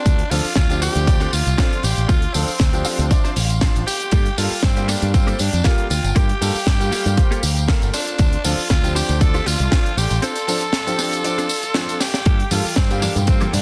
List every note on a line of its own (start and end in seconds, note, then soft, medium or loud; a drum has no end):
0.00 0.21 C4 loud
0.00 0.22 D4 medium
0.00 0.32 D4 loud
0.00 0.22 F4 medium
0.00 0.22 A4 medium
0.00 4.09 D5 medium
0.00 7.90 F5 medium
0.00 4.08 C6 medium
0.06 0.22 D2 loud
0.06 kick loud
0.06 closed hi-hat medium
0.06 tambourine soft
0.19 closed hi-hat medium
0.31 0.39 D2 loud
0.31 0.43 F3 medium
0.31 0.43 C4 medium
0.31 0.43 D4 medium
0.31 0.56 F4 loud
0.31 0.43 A4 medium
0.31 muted clean electric guitar stroke soft
0.31 open hi-hat loud
0.31 tambourine medium
0.45 muted picked electric bass stroke soft
0.45 tambourine soft
0.56 0.87 D2 medium
0.56 0.80 F4 loud
0.56 kick loud
0.56 snare loud
0.56 tambourine soft
0.69 1.04 F3 medium
0.69 1.04 C4 medium
0.69 1.04 D4 medium
0.69 1.05 G4 medium
0.69 muted clean electric guitar stroke soft
0.69 closed hi-hat soft
0.69 tambourine soft
0.82 1.01 C4 medium
0.82 1.01 D4 medium
0.82 1.02 F4 medium
0.82 1.34 G4 loud
0.82 1.02 A4 medium
0.82 open hi-hat loud
0.82 tambourine medium
0.96 1.25 D2 loud
0.96 closed hi-hat medium
0.96 tambourine soft
1.07 1.25 F3 medium
1.07 1.26 C4 medium
1.07 1.26 D4 medium
1.07 1.26 D5 loud
1.07 kick loud
1.07 closed hi-hat medium
1.07 tambourine soft
1.20 1.33 C4 loud
1.20 1.33 D4 medium
1.20 1.33 F4 loud
1.20 1.33 A4 loud
1.20 closed hi-hat soft
1.20 tambourine soft
1.33 1.41 D2 medium
1.33 1.85 F4 loud
1.33 open hi-hat loud
1.33 tambourine medium
1.46 1.54 C2 medium
1.46 muted clean electric guitar stroke soft
1.46 closed hi-hat medium
1.46 tambourine soft
1.58 1.76 F3 medium
1.58 1.83 C4 medium
1.58 1.76 C4 medium
1.58 1.84 D4 medium
1.58 1.77 D4 medium
1.58 1.84 F4 medium
1.58 1.84 A4 medium
1.58 1.77 C5 medium
1.58 kick loud
1.58 snare loud
1.58 closed hi-hat medium
1.58 tambourine soft
1.72 closed hi-hat medium
1.83 1.92 A1 medium
1.83 2.08 G4 loud
1.83 open hi-hat medium
1.83 tambourine medium
1.97 2.04 A1 loud
1.97 closed hi-hat medium
1.97 tambourine soft
2.08 2.25 D2 loud
2.08 2.22 C4 loud
2.08 2.22 D4 medium
2.08 2.23 F4 loud
2.08 2.36 F4 loud
2.08 2.23 A4 loud
2.08 kick loud
2.08 closed hi-hat medium
2.08 tambourine soft
2.22 closed hi-hat medium
2.34 2.43 D2 loud
2.34 2.46 F3 medium
2.34 3.11 C4 medium
2.34 2.46 C4 medium
2.34 2.47 D4 medium
2.34 2.47 A4 medium
2.34 muted clean electric guitar stroke soft
2.34 open hi-hat loud
2.34 tambourine medium
2.48 tambourine soft
2.59 2.85 D2 medium
2.59 kick loud
2.59 snare loud
2.59 closed hi-hat medium
2.59 tambourine soft
2.73 3.08 F3 medium
2.73 3.08 C4 medium
2.73 3.08 D4 medium
2.73 3.08 G4 medium
2.73 muted clean electric guitar stroke soft
2.73 closed hi-hat medium
2.73 tambourine soft
2.85 3.05 C4 medium
2.85 3.05 D4 medium
2.85 3.05 F4 medium
2.85 3.05 A4 loud
2.85 3.09 F5 medium
2.85 open hi-hat loud
2.85 tambourine medium
2.99 3.14 D2 loud
2.99 closed hi-hat medium
2.99 tambourine soft
3.10 3.29 F3 medium
3.10 3.29 C4 medium
3.10 3.29 D4 medium
3.10 3.29 D5 medium
3.10 3.34 E5 medium
3.10 kick loud
3.10 closed hi-hat loud
3.10 tambourine soft
3.24 3.36 C4 loud
3.24 3.36 D4 loud
3.24 3.36 F4 loud
3.24 3.36 C5 loud
3.24 closed hi-hat soft
3.24 tambourine soft
3.36 3.67 A1 medium
3.36 3.60 F5 medium
3.36 open hi-hat loud
3.36 tambourine medium
3.49 muted clean electric guitar stroke soft
3.49 closed hi-hat medium
3.49 tambourine soft
3.61 3.80 F3 medium
3.61 3.87 C4 medium
3.61 3.80 C4 medium
3.61 3.87 D4 medium
3.61 3.80 D4 medium
3.61 3.87 F4 medium
3.61 3.87 C5 medium
3.61 3.80 C5 medium
3.61 3.85 F5 medium
3.61 kick loud
3.61 snare loud
3.61 closed hi-hat medium
3.75 3.82 A1 medium
3.75 closed hi-hat medium
3.75 tambourine soft
3.87 4.39 G4 loud
3.87 4.10 G5 medium
3.87 open hi-hat loud
3.87 tambourine medium
4.01 closed hi-hat soft
4.01 tambourine soft
4.11 4.28 G2 loud
4.11 4.26 A#3 loud
4.11 4.26 F4 medium
4.11 4.26 G4 loud
4.11 4.26 A4 loud
4.11 7.90 G5 medium
4.11 kick loud
4.11 closed hi-hat medium
4.11 tambourine soft
4.26 closed hi-hat medium
4.37 4.46 G2 loud
4.37 4.49 G3 medium
4.37 4.50 A#3 medium
4.37 4.65 F4 loud
4.37 4.50 F4 medium
4.37 4.50 A4 medium
4.37 muted clean electric guitar stroke soft
4.37 open hi-hat loud
4.37 tambourine medium
4.51 muted picked electric bass stroke soft
4.51 tambourine soft
4.63 4.94 G2 loud
4.63 4.90 C4 loud
4.63 kick loud
4.63 snare loud
4.63 tambourine soft
4.76 5.11 G3 medium
4.76 5.11 A#3 medium
4.76 5.11 F4 medium
4.76 5.11 G4 medium
4.76 muted clean electric guitar stroke soft
4.76 closed hi-hat medium
4.76 tambourine soft
4.88 5.08 A#3 medium
4.88 5.13 D4 loud
4.88 5.08 F4 medium
4.88 5.08 G4 medium
4.88 5.08 A4 medium
4.88 open hi-hat loud
4.88 tambourine medium
5.02 5.32 G2 loud
5.02 closed hi-hat medium
5.02 tambourine soft
5.14 5.32 G3 medium
5.14 5.32 A#3 medium
5.14 5.41 C4 medium
5.14 5.33 F4 medium
5.14 5.33 C5 medium
5.14 kick loud
5.14 closed hi-hat medium
5.14 tambourine soft
5.27 5.39 A#3 loud
5.27 5.39 F4 medium
5.27 5.39 G4 loud
5.27 5.40 A4 loud
5.27 closed hi-hat soft
5.27 tambourine soft
5.39 5.48 G2 medium
5.39 5.67 D4 loud
5.39 open hi-hat loud
5.39 tambourine medium
5.52 5.60 F2 medium
5.52 muted clean electric guitar stroke soft
5.52 closed hi-hat medium
5.52 tambourine soft
5.64 5.83 G3 medium
5.64 5.90 A#3 medium
5.64 5.83 A#3 medium
5.64 5.90 F4 medium
5.64 5.90 F4 loud
5.64 5.83 F4 medium
5.64 5.90 G4 medium
5.64 5.90 A4 medium
5.64 5.84 A#4 medium
5.64 kick loud
5.64 snare loud
5.64 closed hi-hat medium
5.64 tambourine soft
5.78 closed hi-hat soft
5.90 5.99 D2 medium
5.90 6.17 F4 loud
5.90 open hi-hat medium
5.90 tambourine medium
6.04 6.11 G1 medium
6.04 closed hi-hat medium
6.04 tambourine soft
6.15 6.32 G2 loud
6.15 6.29 A#3 loud
6.15 6.29 F4 loud
6.15 7.68 G4 loud
6.15 6.29 G4 medium
6.15 6.29 A#4 loud
6.15 kick loud
6.15 closed hi-hat medium
6.15 tambourine medium
6.29 closed hi-hat medium
6.40 6.49 G2 loud
6.40 6.53 G3 medium
6.40 6.53 A#3 medium
6.40 6.53 F4 medium
6.40 6.53 A4 medium
6.40 muted clean electric guitar stroke soft
6.40 open hi-hat loud
6.40 tambourine medium
6.55 muted picked electric bass stroke soft
6.55 tambourine soft
6.67 6.92 G2 medium
6.67 kick loud
6.67 snare loud
6.67 closed hi-hat medium
6.67 tambourine soft
6.80 7.14 G3 medium
6.80 7.14 A#3 medium
6.80 7.15 F4 medium
6.80 7.15 G4 medium
6.80 muted clean electric guitar stroke soft
6.80 closed hi-hat medium
6.80 tambourine soft
6.91 7.11 A#3 loud
6.91 7.11 F4 medium
6.91 7.12 G4 medium
6.91 7.12 A4 loud
6.91 muted picked electric bass stroke soft
6.91 open hi-hat loud
6.91 tambourine medium
7.06 7.20 G2 loud
7.06 closed hi-hat medium
7.06 tambourine soft
7.17 7.36 G3 medium
7.17 7.36 A#3 medium
7.17 7.36 F4 medium
7.17 7.36 C5 medium
7.17 kick loud
7.17 closed hi-hat medium
7.17 tambourine soft
7.31 7.43 A#3 loud
7.31 7.43 F4 medium
7.31 7.43 G4 loud
7.31 7.43 A4 loud
7.31 closed hi-hat medium
7.31 tambourine soft
7.43 7.73 D2 medium
7.43 open hi-hat loud
7.43 tambourine medium
7.56 muted clean electric guitar stroke soft
7.56 closed hi-hat medium
7.56 tambourine soft
7.68 7.86 G3 medium
7.68 7.93 A#3 medium
7.68 7.87 A#3 medium
7.68 7.93 F4 medium
7.68 7.87 F4 medium
7.68 7.93 G4 medium
7.68 7.93 A4 loud
7.68 7.87 A#4 medium
7.68 kick loud
7.68 snare loud
7.68 closed hi-hat medium
7.68 tambourine soft
7.82 7.89 G1 medium
7.82 closed hi-hat medium
7.82 tambourine soft
7.93 8.35 C4 loud
7.93 8.46 D4 loud
7.93 8.35 D4 medium
7.93 8.35 F4 medium
7.93 12.22 A4 medium
7.93 8.35 A4 medium
7.93 12.22 D5 medium
7.93 13.62 F5 medium
7.93 12.22 C6 medium
7.93 open hi-hat loud
7.93 tambourine medium
8.07 closed hi-hat medium
8.07 tambourine soft
8.19 8.35 D2 loud
8.19 kick loud
8.19 closed hi-hat medium
8.19 tambourine soft
8.33 closed hi-hat medium
8.44 8.53 D2 loud
8.44 8.56 F3 medium
8.44 8.56 C4 medium
8.44 8.56 D4 medium
8.44 8.70 F4 loud
8.44 8.57 A4 medium
8.44 muted clean electric guitar stroke soft
8.44 open hi-hat loud
8.44 tambourine loud
8.58 muted picked electric bass stroke soft
8.58 tambourine soft
8.70 9.00 D2 medium
8.70 8.94 F4 loud
8.70 kick loud
8.70 snare loud
8.70 closed hi-hat medium
8.70 tambourine medium
8.83 9.18 F3 medium
8.83 9.18 C4 medium
8.83 9.18 D4 medium
8.83 9.18 G4 loud
8.83 muted clean electric guitar stroke soft
8.83 closed hi-hat medium
8.83 tambourine soft
8.95 9.15 C4 medium
8.95 9.15 D4 medium
8.95 9.15 F4 medium
8.95 9.23 G4 loud
8.95 9.15 C5 loud
8.95 open hi-hat loud
8.95 tambourine medium
9.09 9.39 D2 loud
9.09 closed hi-hat medium
9.09 tambourine soft
9.20 9.39 F3 medium
9.20 9.39 C4 medium
9.20 9.39 D4 medium
9.20 9.48 A4 loud
9.20 9.39 D5 medium
9.20 kick loud
9.20 closed hi-hat loud
9.20 tambourine soft
9.34 9.46 C4 loud
9.34 9.46 D4 medium
9.34 9.46 F4 loud
9.34 9.46 G4 loud
9.34 closed hi-hat soft
9.34 tambourine soft
9.46 9.55 D2 medium
9.46 9.99 F4 loud
9.46 open hi-hat loud
9.46 tambourine medium
9.59 9.67 C2 medium
9.59 muted clean electric guitar stroke soft
9.59 closed hi-hat medium
9.59 tambourine soft
9.71 9.90 F3 medium
9.71 9.90 C4 medium
9.71 9.97 C4 medium
9.71 9.90 D4 medium
9.71 9.97 D4 medium
9.71 9.97 F4 medium
9.71 9.97 A4 medium
9.71 9.90 C5 medium
9.71 kick loud
9.71 snare loud
9.71 closed hi-hat medium
9.71 tambourine soft
9.86 closed hi-hat medium
9.97 10.05 A1 medium
9.97 10.22 G4 loud
9.97 open hi-hat medium
9.97 tambourine medium
10.10 10.18 A1 medium
10.10 closed hi-hat medium
10.10 tambourine soft
10.22 10.36 C4 loud
10.22 10.36 D4 medium
10.22 10.36 F4 medium
10.22 12.02 A4 loud
10.22 10.36 C5 loud
10.22 closed hi-hat medium
10.22 tambourine soft
10.36 closed hi-hat medium
10.36 tambourine soft
10.47 10.60 F3 medium
10.47 10.60 C4 medium
10.47 10.60 D4 medium
10.47 10.60 A4 medium
10.47 muted clean electric guitar stroke soft
10.47 open hi-hat loud
10.47 tambourine medium
10.61 closed hi-hat medium
10.61 tambourine soft
10.73 snare loud
10.73 closed hi-hat loud
10.73 tambourine soft
10.86 11.21 F3 medium
10.86 11.21 C4 medium
10.86 11.22 D4 medium
10.86 11.22 G4 medium
10.86 muted clean electric guitar stroke soft
10.86 closed hi-hat medium
10.86 tambourine soft
10.98 11.18 C4 medium
10.98 11.18 D4 medium
10.98 11.18 F4 medium
10.98 11.19 A4 medium
10.98 open hi-hat loud
10.98 tambourine medium
11.12 closed hi-hat medium
11.12 tambourine soft
11.24 11.42 F3 medium
11.24 11.42 C4 medium
11.24 11.43 D4 medium
11.24 11.43 D5 medium
11.24 closed hi-hat loud
11.24 tambourine soft
11.38 11.50 C4 medium
11.38 11.50 D4 medium
11.38 11.50 F4 loud
11.38 11.50 A4 loud
11.38 closed hi-hat medium
11.38 tambourine soft
11.49 open hi-hat loud
11.49 tambourine medium
11.63 muted clean electric guitar stroke soft
11.63 closed hi-hat medium
11.63 tambourine soft
11.74 11.93 F3 medium
11.74 12.00 C4 medium
11.74 11.93 C4 medium
11.74 11.93 D4 medium
11.74 12.01 D4 medium
11.74 12.01 F4 medium
11.74 12.01 A4 medium
11.74 11.94 C5 medium
11.74 snare loud
11.74 closed hi-hat loud
11.74 tambourine soft
11.89 closed hi-hat medium
11.89 tambourine soft
12.00 12.51 G4 loud
12.00 snare medium
12.00 open hi-hat loud
12.00 tambourine medium
12.14 snare medium
12.14 closed hi-hat medium
12.14 tambourine soft
12.25 12.42 G2 loud
12.25 12.39 A#3 loud
12.25 12.40 F4 medium
12.25 12.40 G4 medium
12.25 13.62 A4 medium
12.25 12.40 A4 loud
12.25 13.62 G5 medium
12.25 kick loud
12.25 closed hi-hat medium
12.25 tambourine soft
12.40 closed hi-hat medium
12.51 12.60 G2 loud
12.51 12.63 G3 medium
12.51 12.63 A#3 medium
12.51 12.63 F4 medium
12.51 12.79 F4 loud
12.51 12.63 A4 medium
12.51 muted clean electric guitar stroke soft
12.51 open hi-hat loud
12.51 tambourine medium
12.51 high conga medium
12.65 muted picked electric bass stroke soft
12.65 tambourine soft
12.76 13.07 G2 medium
12.76 13.02 C4 medium
12.76 kick loud
12.76 snare loud
12.76 tambourine soft
12.90 13.25 G3 medium
12.90 13.25 A#3 medium
12.90 13.25 F4 medium
12.90 13.25 G4 medium
12.90 muted clean electric guitar stroke soft
12.90 closed hi-hat soft
12.90 tambourine soft
13.02 13.22 A#3 medium
13.02 13.14 D4 medium
13.02 13.22 F4 medium
13.02 13.22 G4 medium
13.02 13.22 A4 medium
13.02 open hi-hat medium
13.02 tambourine medium
13.02 high conga medium
13.16 13.46 G2 loud
13.16 closed hi-hat medium
13.16 tambourine soft
13.16 low conga medium
13.27 13.46 G3 medium
13.27 13.46 A#3 medium
13.27 13.55 C4 medium
13.27 13.46 F4 medium
13.27 13.46 C5 medium
13.27 kick loud
13.27 closed hi-hat medium
13.27 tambourine soft
13.40 13.53 A#3 loud
13.40 13.53 F4 medium
13.40 13.53 G4 loud
13.40 13.53 A4 loud
13.40 closed hi-hat soft
13.40 tambourine soft
13.40 high conga medium
13.53 13.61 G2 medium
13.53 13.62 D4 loud
13.53 open hi-hat loud
13.53 tambourine medium
13.53 low conga loud